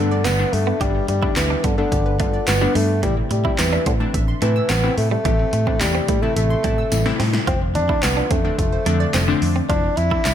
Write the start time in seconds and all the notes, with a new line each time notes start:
Already playing: G2 D3 G3 A3 B3 D4, downlifter
0.11 D5
0.25 G1 G3 B3, snare, clap, closed hi-hat, tambourine
0.39 D3 G3 A3 B3 D4, muted clean electric guitar stroke
0.53 G2 A3, open hi-hat
0.67 B3
0.80 G1 D3 G3 A3 B3 D4 G4, kick, closed hi-hat
0.95 B3
1.08 G2 G3 A3, muted clean electric guitar stroke, closed hi-hat
1.22 D3 G3 A3 B3 D4 E4, kick
1.36 D2 E3 B3, muted clean electric guitar stroke, snare, clap, closed hi-hat, tambourine
1.50 D4 G4
1.64 G2 D3 B3 D4, kick, closed hi-hat
1.78 D3 G3 A3 B3 D4 A4
1.92 G1 G4, kick, closed hi-hat
2.06 B4
2.19 G2 D3 G3 A3 B3 F4 A4, kick, closed hi-hat
2.34 D5
2.47 G1 G3 B3, muted clean electric guitar stroke, snare, clap, closed hi-hat, tambourine
2.61 D3 G3 A3 B3 D4
2.75 G2 G3 A3, open hi-hat
3.03 A1 C3 E3 G3 A3 C4 E4, kick, closed hi-hat
3.17 C4
3.31 A2 G3 A3, muted clean electric guitar stroke, closed hi-hat
3.44 C3 E3 A3 C4 E4, kick
3.58 E2 E3 C4, muted clean electric guitar stroke, snare, clap, closed hi-hat, tambourine
3.72 D4 E5
3.86 A2 D3 C4 E4, kick, closed hi-hat
4.00 C3 E3 A3 C4 D4 A5
4.14 A1 E5, kick, closed hi-hat
4.28 C6
4.42 A2 C3 E3 A3 C4 E4 A5, closed hi-hat
4.56 E6
4.69 A1 E3 B3 C4, snare, clap, closed hi-hat, tambourine
4.83 C3 E3 A3 C4 E4, muted clean electric guitar stroke
4.97 A2 A3, open hi-hat
5.11 G3 A3
5.25 A1 C3 E3 A3 C4 G4, kick, closed hi-hat
5.39 C4
5.53 A2 A3, muted clean electric guitar stroke, closed hi-hat
5.67 C3 E3 A3 C4 D4 E4, kick
5.81 E2 G3 C4, muted clean electric guitar stroke, snare, clap, closed hi-hat, tambourine
5.95 C4 E5
6.08 A2 A3 E4, kick, closed hi-hat
6.22 C3 E3 A3 C4 E4 A5
6.36 A1 A3 E5, closed hi-hat
6.50 C6
6.64 A2 C3 E3 G3 A3 C4 E4 A5, kick, closed hi-hat
6.78 E6
6.92 A1 E3, muted clean electric guitar stroke, snare, closed hi-hat, tambourine
7.05 C3 E3 A3 C4 E4, snare
7.20 A2 A3 C4, snare, open hi-hat
7.34 snare
7.47 F1 D3 F3 A3 C4 D4 F4, kick, closed hi-hat
7.61 C4
7.75 F2 A3 D4, muted clean electric guitar stroke, closed hi-hat
7.89 D3 F3 A3 C4 D4 E4, kick
8.03 C2 B3 C4, muted clean electric guitar stroke, snare, clap, closed hi-hat, tambourine
8.17 D4 F4
8.31 F2 A3 C4 D4, kick, closed hi-hat
8.44 D3 F3 A3 C4 D4 A4
8.58 F1 A3 F4, kick, closed hi-hat
8.72 C5
8.86 F2 D3 F3 A3 C4 D4 A4, closed hi-hat
9.00 D5
9.14 F1 F3 C4, snare, clap, closed hi-hat, tambourine
9.28 D3 F3 A3 C4 D4, muted clean electric guitar stroke
9.42 F2 A3, open hi-hat
9.56 C4
9.69 F1 D3 F3 A3 C4 D4 E4 F4, kick, closed hi-hat
9.84 C4
9.97 F2 A3 E4, muted clean electric guitar stroke, closed hi-hat
10.11 D3 F3 A3 C4 D4 E4, kick
10.25 C2 C4, muted clean electric guitar stroke, snare, clap, closed hi-hat, tambourine